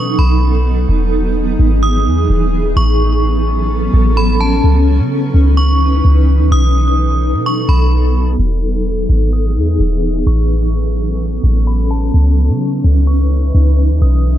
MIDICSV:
0, 0, Header, 1, 4, 480
1, 0, Start_track
1, 0, Key_signature, 4, "major"
1, 0, Tempo, 468750
1, 911, Time_signature, 4, 2, 24, 8
1, 14726, End_track
2, 0, Start_track
2, 0, Title_t, "Synth bell"
2, 0, Program_c, 0, 98
2, 0, Note_on_c, 0, 85, 89
2, 185, Note_off_c, 0, 85, 0
2, 192, Note_on_c, 0, 83, 81
2, 420, Note_off_c, 0, 83, 0
2, 1871, Note_on_c, 0, 87, 79
2, 2322, Note_off_c, 0, 87, 0
2, 2834, Note_on_c, 0, 85, 100
2, 4232, Note_off_c, 0, 85, 0
2, 4271, Note_on_c, 0, 83, 90
2, 4499, Note_off_c, 0, 83, 0
2, 4511, Note_on_c, 0, 81, 85
2, 4739, Note_off_c, 0, 81, 0
2, 5707, Note_on_c, 0, 85, 86
2, 6160, Note_off_c, 0, 85, 0
2, 6677, Note_on_c, 0, 87, 103
2, 7593, Note_off_c, 0, 87, 0
2, 7642, Note_on_c, 0, 85, 86
2, 7865, Note_off_c, 0, 85, 0
2, 7873, Note_on_c, 0, 83, 82
2, 8100, Note_off_c, 0, 83, 0
2, 9553, Note_on_c, 0, 87, 74
2, 10003, Note_off_c, 0, 87, 0
2, 10516, Note_on_c, 0, 85, 98
2, 11913, Note_off_c, 0, 85, 0
2, 11952, Note_on_c, 0, 83, 83
2, 12180, Note_off_c, 0, 83, 0
2, 12191, Note_on_c, 0, 81, 81
2, 12419, Note_off_c, 0, 81, 0
2, 13386, Note_on_c, 0, 85, 78
2, 13840, Note_off_c, 0, 85, 0
2, 14355, Note_on_c, 0, 87, 98
2, 14726, Note_off_c, 0, 87, 0
2, 14726, End_track
3, 0, Start_track
3, 0, Title_t, "Ambient pad"
3, 0, Program_c, 1, 92
3, 0, Note_on_c, 1, 54, 78
3, 0, Note_on_c, 1, 59, 74
3, 0, Note_on_c, 1, 63, 77
3, 0, Note_on_c, 1, 69, 87
3, 891, Note_off_c, 1, 54, 0
3, 892, Note_off_c, 1, 69, 0
3, 911, Note_on_c, 1, 52, 82
3, 913, Note_on_c, 1, 68, 89
3, 2790, Note_off_c, 1, 63, 0
3, 2792, Note_off_c, 1, 59, 0
3, 2812, Note_off_c, 1, 52, 0
3, 2813, Note_off_c, 1, 68, 0
3, 2834, Note_on_c, 1, 61, 76
3, 2834, Note_on_c, 1, 69, 92
3, 2835, Note_on_c, 1, 54, 82
3, 2836, Note_on_c, 1, 59, 76
3, 4734, Note_off_c, 1, 54, 0
3, 4734, Note_off_c, 1, 59, 0
3, 4734, Note_off_c, 1, 69, 0
3, 4752, Note_on_c, 1, 52, 81
3, 4752, Note_on_c, 1, 63, 74
3, 4752, Note_on_c, 1, 71, 93
3, 6634, Note_off_c, 1, 61, 0
3, 6653, Note_off_c, 1, 52, 0
3, 6653, Note_off_c, 1, 71, 0
3, 6673, Note_on_c, 1, 54, 82
3, 6673, Note_on_c, 1, 59, 75
3, 6673, Note_on_c, 1, 69, 89
3, 8553, Note_off_c, 1, 63, 0
3, 8573, Note_off_c, 1, 54, 0
3, 8573, Note_off_c, 1, 59, 0
3, 8573, Note_off_c, 1, 69, 0
3, 8591, Note_on_c, 1, 59, 71
3, 8591, Note_on_c, 1, 63, 73
3, 8591, Note_on_c, 1, 68, 87
3, 8592, Note_on_c, 1, 52, 77
3, 10492, Note_off_c, 1, 52, 0
3, 10492, Note_off_c, 1, 63, 0
3, 10492, Note_off_c, 1, 68, 0
3, 10510, Note_on_c, 1, 61, 72
3, 10511, Note_on_c, 1, 54, 82
3, 10511, Note_on_c, 1, 69, 85
3, 12393, Note_off_c, 1, 59, 0
3, 12412, Note_off_c, 1, 54, 0
3, 12412, Note_off_c, 1, 69, 0
3, 12433, Note_on_c, 1, 52, 77
3, 12433, Note_on_c, 1, 63, 75
3, 12434, Note_on_c, 1, 71, 85
3, 14312, Note_off_c, 1, 61, 0
3, 14333, Note_off_c, 1, 52, 0
3, 14333, Note_off_c, 1, 71, 0
3, 14350, Note_on_c, 1, 69, 89
3, 14351, Note_on_c, 1, 54, 80
3, 14351, Note_on_c, 1, 59, 73
3, 14726, Note_off_c, 1, 54, 0
3, 14726, Note_off_c, 1, 59, 0
3, 14726, Note_off_c, 1, 63, 0
3, 14726, Note_off_c, 1, 69, 0
3, 14726, End_track
4, 0, Start_track
4, 0, Title_t, "808-style bass"
4, 0, Program_c, 2, 38
4, 0, Note_on_c, 2, 47, 98
4, 174, Note_off_c, 2, 47, 0
4, 192, Note_on_c, 2, 35, 108
4, 883, Note_off_c, 2, 35, 0
4, 911, Note_on_c, 2, 28, 109
4, 1602, Note_off_c, 2, 28, 0
4, 1632, Note_on_c, 2, 32, 113
4, 2112, Note_on_c, 2, 40, 100
4, 2127, Note_off_c, 2, 32, 0
4, 2340, Note_off_c, 2, 40, 0
4, 2352, Note_on_c, 2, 27, 107
4, 2812, Note_off_c, 2, 27, 0
4, 2831, Note_on_c, 2, 33, 113
4, 3990, Note_off_c, 2, 33, 0
4, 4031, Note_on_c, 2, 33, 110
4, 4723, Note_off_c, 2, 33, 0
4, 4751, Note_on_c, 2, 37, 106
4, 5112, Note_on_c, 2, 49, 103
4, 5128, Note_off_c, 2, 37, 0
4, 5454, Note_off_c, 2, 49, 0
4, 5470, Note_on_c, 2, 37, 106
4, 6162, Note_off_c, 2, 37, 0
4, 6191, Note_on_c, 2, 37, 107
4, 6551, Note_on_c, 2, 39, 104
4, 6567, Note_off_c, 2, 37, 0
4, 6665, Note_off_c, 2, 39, 0
4, 6672, Note_on_c, 2, 35, 106
4, 7512, Note_on_c, 2, 47, 99
4, 7527, Note_off_c, 2, 35, 0
4, 7854, Note_off_c, 2, 47, 0
4, 7872, Note_on_c, 2, 35, 108
4, 8563, Note_off_c, 2, 35, 0
4, 8592, Note_on_c, 2, 28, 101
4, 9283, Note_off_c, 2, 28, 0
4, 9312, Note_on_c, 2, 32, 101
4, 9793, Note_on_c, 2, 40, 96
4, 9808, Note_off_c, 2, 32, 0
4, 10020, Note_off_c, 2, 40, 0
4, 10032, Note_on_c, 2, 27, 103
4, 10493, Note_off_c, 2, 27, 0
4, 10512, Note_on_c, 2, 33, 101
4, 11671, Note_off_c, 2, 33, 0
4, 11712, Note_on_c, 2, 33, 101
4, 12403, Note_off_c, 2, 33, 0
4, 12432, Note_on_c, 2, 37, 99
4, 12792, Note_on_c, 2, 49, 99
4, 12807, Note_off_c, 2, 37, 0
4, 13134, Note_off_c, 2, 49, 0
4, 13151, Note_on_c, 2, 37, 99
4, 13843, Note_off_c, 2, 37, 0
4, 13870, Note_on_c, 2, 37, 108
4, 14231, Note_on_c, 2, 39, 93
4, 14246, Note_off_c, 2, 37, 0
4, 14345, Note_off_c, 2, 39, 0
4, 14352, Note_on_c, 2, 35, 103
4, 14726, Note_off_c, 2, 35, 0
4, 14726, End_track
0, 0, End_of_file